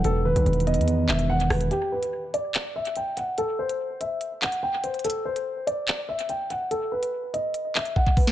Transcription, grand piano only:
\new Staff \with { instrumentName = "Grand piano" } { \time 4/4 \key b \phrygian \tempo 4 = 144 a'8 b'4 dis''4 e''8 fis''8 b'8 | g'8 b'4 d''4 e''8 g''8 fis''8 | a'8 c''4 e''4 fis''8 g''8 c''8 | a'8 c''4 d''4 e''8 g''8 fis''8 |
a'8 b'4 dis''4 e''8 fis''8 b'8 | }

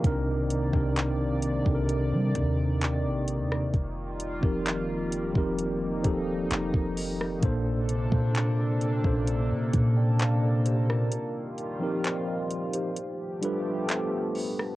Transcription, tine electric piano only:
\new Staff \with { instrumentName = "Tine electric piano" } { \time 4/4 \key c \dorian \tempo 4 = 65 << { ees''16 r2. r8. | r1 | r2 r8. <d'' g''>16 <c'' f''>16 <a' d''>16 <g' c''>16 <f' bes'>16~ | <f' bes'>16 r8. <g' c''>16 <bes' ees''>8 <g' c''>8 r8. a'4 | } \\ { <c c' d' ees' bes'>8. <c c' d' ees' bes'>4 <c c' d' ees' a' bes'>4.~ <c c' d' ees' a' bes'>16 r8 | r8. <f c' ees' g' bes'>4 <f c' ees' g' bes'>8. <f c' ees' g' a'>4~ <f c' ees' g' a'>16 r16 | <bes, bes d' a' c''>8. <bes, bes d' a' c''>4 <bes, bes des' d' a' c''>4.~ <bes, bes des' d' a' c''>16 r8 | r8. <f c' ees' g' bes'>4 r8. <g d' f' a' b'>4~ <g d' f' a' b'>16 r16 | } >> }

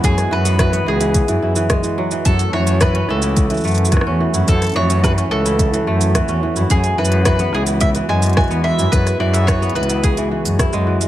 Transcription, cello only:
\new Staff \with { instrumentName = "Cello" } { \clef bass \time 4/4 \key e \mixolydian \tempo 4 = 108 fis,8 fis,4 cis,8. fis,16 fis,16 r4 r16 | fis,8 fis,4 cis,4 fis,8. e,8 fis,16 | fis,8 fis,4 cis,4 fis,8. e,8 fis,16 | fis,8 fis,4 cis,4 fis,8. e,8 fis,16 |
fis,8 fis,4 cis,4 r16 fis,8 fis,16 r8 | }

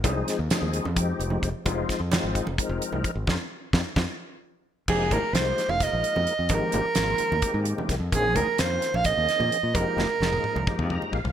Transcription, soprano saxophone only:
\new Staff \with { instrumentName = "Soprano saxophone" } { \time 7/8 \key f \minor \tempo 4 = 130 r2. r8 | r2. r8 | r2. r8 | aes'8 bes'8 c''8. f''16 ees''4. |
bes'2. r8 | aes'8 bes'8 c''8. f''16 ees''4. | bes'2. r8 | }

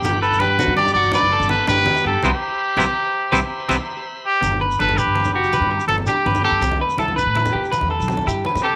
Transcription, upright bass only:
\new Staff \with { instrumentName = "Upright bass" } { \clef bass \time 12/8 \key g \major \tempo 4. = 110 g,,4 g,8 r16 g,8. g,,8 r16 fis,,8 g,,8 r16 g,,8 r8 g,16 r16 | c,16 r4 r16 c,16 r4 r16 c,16 r8. c,16 r4. r16 | g,,4 g,,8 r16 g,,8. fis,,8. g,8 r16 g,,8 r8 g,,8 r16 g,16 | c,8 r8 c,8. a,8. c8 r16 e,8 b,,8 r16 g,8 r16 c8 r16 | }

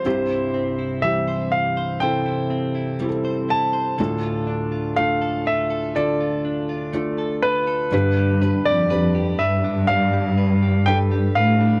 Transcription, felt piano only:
<<
  \new Staff \with { instrumentName = "Felt piano" } { \time 4/4 \key g \mixolydian \tempo 4 = 61 <c' e' g'>4 <e c' g'>4 <c' e' a'>4 <c' e' g' a'>4 | <d' f' a'>4 <d' f' a'>4 <d' f' a'>4 <d' f' a'>4 | <d' g' b'>8 <d' g' b'>8 <d' g' b'>4 <d' g' d''>4 <d' g' a'>4 | }
  \new Staff \with { instrumentName = "Felt piano" } { \clef bass \time 4/4 \key g \mixolydian <c, g,>1 | <d, a,>1 | <g, d>4. r2 r8 | }
>>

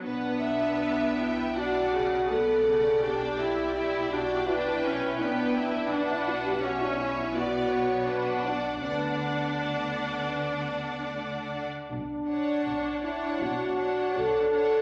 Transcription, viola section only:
\new Staff \with { instrumentName = "Viola section" } { \time 4/4 \key b \minor \tempo 4 = 81 b2 d'8 cis8 b8 cis8 | d'8 e'8 e'8 d'8 d'8 cis'8 b8 e'8 | d'4 cis'4 b4 d'4 | d'2.~ d'8 r8 |
r8 d'4 d'4 d'4 d'8 | }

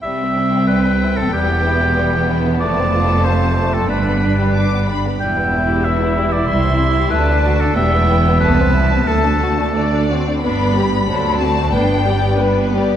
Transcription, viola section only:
\new Staff \with { instrumentName = "Viola section" } { \time 2/4 \key c \major \tempo 4 = 93 c'2 | b2~ | b4 a4 | d'4. r8 |
\key g \major e'2~ | e'4 d'4 | b2 | a4 d'8 c'8 |
<b d'>8 <g b>8 <fis d'>8 <a c'>8 | <b d'>8 <g b>8 <b d'>8 <g b>8 | }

